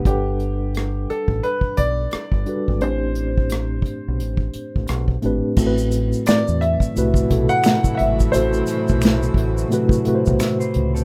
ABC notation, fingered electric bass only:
X:1
M:4/4
L:1/16
Q:"Swing 16ths" 1/4=87
K:Ador
V:1 name="Fingered electric bass" clef=bass
G,,,6 z A,,, z2 B,,,2 z G,,, z ^G,,, | A,,,6 z B,,, A,,,2 z A,,, B,,,2 ^G,,, z | A,,,4 z E,,2 z C,,2 B,,, z3 ^G,,,2 | A,,,2 z B,,,3 A,,,2 z3 B,,, z2 ^C,,2 |]